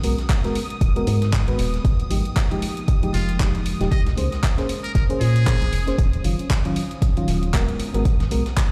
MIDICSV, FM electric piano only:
0, 0, Header, 1, 2, 480
1, 0, Start_track
1, 0, Tempo, 517241
1, 1714, Time_signature, 4, 2, 24, 8
1, 8089, End_track
2, 0, Start_track
2, 0, Title_t, "FM electric piano"
2, 0, Program_c, 0, 5
2, 29, Note_on_c, 0, 56, 75
2, 33, Note_on_c, 0, 59, 69
2, 36, Note_on_c, 0, 66, 68
2, 40, Note_on_c, 0, 70, 81
2, 143, Note_off_c, 0, 56, 0
2, 145, Note_off_c, 0, 59, 0
2, 147, Note_off_c, 0, 66, 0
2, 149, Note_off_c, 0, 70, 0
2, 406, Note_on_c, 0, 56, 83
2, 410, Note_on_c, 0, 59, 75
2, 414, Note_on_c, 0, 66, 79
2, 417, Note_on_c, 0, 70, 94
2, 552, Note_off_c, 0, 56, 0
2, 553, Note_off_c, 0, 59, 0
2, 555, Note_off_c, 0, 66, 0
2, 557, Note_off_c, 0, 70, 0
2, 887, Note_on_c, 0, 56, 94
2, 891, Note_on_c, 0, 59, 84
2, 894, Note_on_c, 0, 66, 83
2, 897, Note_on_c, 0, 70, 100
2, 971, Note_off_c, 0, 56, 0
2, 973, Note_off_c, 0, 59, 0
2, 975, Note_off_c, 0, 66, 0
2, 976, Note_off_c, 0, 70, 0
2, 989, Note_on_c, 0, 56, 73
2, 993, Note_on_c, 0, 59, 66
2, 997, Note_on_c, 0, 66, 65
2, 1000, Note_on_c, 0, 70, 81
2, 1337, Note_off_c, 0, 56, 0
2, 1339, Note_off_c, 0, 59, 0
2, 1340, Note_off_c, 0, 66, 0
2, 1342, Note_off_c, 0, 70, 0
2, 1366, Note_on_c, 0, 56, 77
2, 1370, Note_on_c, 0, 59, 72
2, 1373, Note_on_c, 0, 66, 74
2, 1377, Note_on_c, 0, 71, 90
2, 1699, Note_off_c, 0, 56, 0
2, 1701, Note_off_c, 0, 59, 0
2, 1703, Note_off_c, 0, 66, 0
2, 1704, Note_off_c, 0, 71, 0
2, 1948, Note_on_c, 0, 53, 75
2, 1951, Note_on_c, 0, 56, 69
2, 1955, Note_on_c, 0, 63, 67
2, 1959, Note_on_c, 0, 67, 81
2, 2063, Note_off_c, 0, 53, 0
2, 2064, Note_off_c, 0, 56, 0
2, 2066, Note_off_c, 0, 63, 0
2, 2068, Note_off_c, 0, 67, 0
2, 2326, Note_on_c, 0, 53, 84
2, 2329, Note_on_c, 0, 56, 80
2, 2333, Note_on_c, 0, 63, 78
2, 2337, Note_on_c, 0, 67, 95
2, 2471, Note_off_c, 0, 53, 0
2, 2473, Note_off_c, 0, 56, 0
2, 2475, Note_off_c, 0, 63, 0
2, 2477, Note_off_c, 0, 67, 0
2, 2806, Note_on_c, 0, 53, 90
2, 2810, Note_on_c, 0, 56, 88
2, 2813, Note_on_c, 0, 63, 86
2, 2817, Note_on_c, 0, 67, 104
2, 3127, Note_off_c, 0, 53, 0
2, 3128, Note_off_c, 0, 56, 0
2, 3130, Note_off_c, 0, 63, 0
2, 3132, Note_off_c, 0, 67, 0
2, 3148, Note_on_c, 0, 53, 82
2, 3151, Note_on_c, 0, 56, 73
2, 3155, Note_on_c, 0, 63, 77
2, 3158, Note_on_c, 0, 67, 87
2, 3496, Note_off_c, 0, 53, 0
2, 3498, Note_off_c, 0, 56, 0
2, 3500, Note_off_c, 0, 63, 0
2, 3501, Note_off_c, 0, 67, 0
2, 3525, Note_on_c, 0, 53, 83
2, 3529, Note_on_c, 0, 56, 79
2, 3532, Note_on_c, 0, 63, 80
2, 3536, Note_on_c, 0, 67, 102
2, 3611, Note_off_c, 0, 53, 0
2, 3613, Note_off_c, 0, 56, 0
2, 3615, Note_off_c, 0, 63, 0
2, 3617, Note_off_c, 0, 67, 0
2, 3868, Note_on_c, 0, 58, 76
2, 3872, Note_on_c, 0, 61, 70
2, 3875, Note_on_c, 0, 68, 70
2, 3879, Note_on_c, 0, 72, 82
2, 3983, Note_off_c, 0, 58, 0
2, 3985, Note_off_c, 0, 61, 0
2, 3986, Note_off_c, 0, 68, 0
2, 3988, Note_off_c, 0, 72, 0
2, 4246, Note_on_c, 0, 58, 90
2, 4250, Note_on_c, 0, 61, 85
2, 4253, Note_on_c, 0, 68, 82
2, 4257, Note_on_c, 0, 72, 94
2, 4391, Note_off_c, 0, 58, 0
2, 4393, Note_off_c, 0, 61, 0
2, 4395, Note_off_c, 0, 68, 0
2, 4397, Note_off_c, 0, 72, 0
2, 4726, Note_on_c, 0, 58, 99
2, 4730, Note_on_c, 0, 61, 91
2, 4733, Note_on_c, 0, 68, 91
2, 4737, Note_on_c, 0, 72, 105
2, 5047, Note_off_c, 0, 58, 0
2, 5049, Note_off_c, 0, 61, 0
2, 5050, Note_off_c, 0, 68, 0
2, 5052, Note_off_c, 0, 72, 0
2, 5068, Note_on_c, 0, 58, 86
2, 5071, Note_on_c, 0, 61, 75
2, 5075, Note_on_c, 0, 68, 79
2, 5078, Note_on_c, 0, 72, 90
2, 5416, Note_off_c, 0, 58, 0
2, 5418, Note_off_c, 0, 61, 0
2, 5420, Note_off_c, 0, 68, 0
2, 5421, Note_off_c, 0, 72, 0
2, 5446, Note_on_c, 0, 58, 88
2, 5449, Note_on_c, 0, 61, 84
2, 5453, Note_on_c, 0, 68, 80
2, 5456, Note_on_c, 0, 72, 96
2, 5531, Note_off_c, 0, 58, 0
2, 5533, Note_off_c, 0, 61, 0
2, 5535, Note_off_c, 0, 68, 0
2, 5537, Note_off_c, 0, 72, 0
2, 5788, Note_on_c, 0, 51, 77
2, 5792, Note_on_c, 0, 54, 66
2, 5795, Note_on_c, 0, 61, 69
2, 5799, Note_on_c, 0, 65, 87
2, 5903, Note_off_c, 0, 51, 0
2, 5905, Note_off_c, 0, 54, 0
2, 5907, Note_off_c, 0, 61, 0
2, 5908, Note_off_c, 0, 65, 0
2, 6167, Note_on_c, 0, 51, 91
2, 6170, Note_on_c, 0, 54, 83
2, 6174, Note_on_c, 0, 61, 84
2, 6178, Note_on_c, 0, 65, 95
2, 6312, Note_off_c, 0, 51, 0
2, 6314, Note_off_c, 0, 54, 0
2, 6316, Note_off_c, 0, 61, 0
2, 6317, Note_off_c, 0, 65, 0
2, 6647, Note_on_c, 0, 51, 97
2, 6650, Note_on_c, 0, 54, 84
2, 6654, Note_on_c, 0, 61, 89
2, 6658, Note_on_c, 0, 65, 109
2, 6967, Note_off_c, 0, 51, 0
2, 6969, Note_off_c, 0, 54, 0
2, 6970, Note_off_c, 0, 61, 0
2, 6972, Note_off_c, 0, 65, 0
2, 6989, Note_on_c, 0, 56, 83
2, 6992, Note_on_c, 0, 59, 72
2, 6996, Note_on_c, 0, 66, 75
2, 7000, Note_on_c, 0, 70, 90
2, 7336, Note_off_c, 0, 56, 0
2, 7338, Note_off_c, 0, 59, 0
2, 7340, Note_off_c, 0, 66, 0
2, 7342, Note_off_c, 0, 70, 0
2, 7367, Note_on_c, 0, 56, 86
2, 7371, Note_on_c, 0, 59, 83
2, 7374, Note_on_c, 0, 66, 82
2, 7378, Note_on_c, 0, 70, 96
2, 7452, Note_off_c, 0, 56, 0
2, 7454, Note_off_c, 0, 59, 0
2, 7456, Note_off_c, 0, 66, 0
2, 7458, Note_off_c, 0, 70, 0
2, 7709, Note_on_c, 0, 56, 75
2, 7713, Note_on_c, 0, 59, 72
2, 7717, Note_on_c, 0, 66, 69
2, 7720, Note_on_c, 0, 70, 86
2, 7824, Note_off_c, 0, 56, 0
2, 7825, Note_off_c, 0, 59, 0
2, 7827, Note_off_c, 0, 66, 0
2, 7829, Note_off_c, 0, 70, 0
2, 8089, End_track
0, 0, End_of_file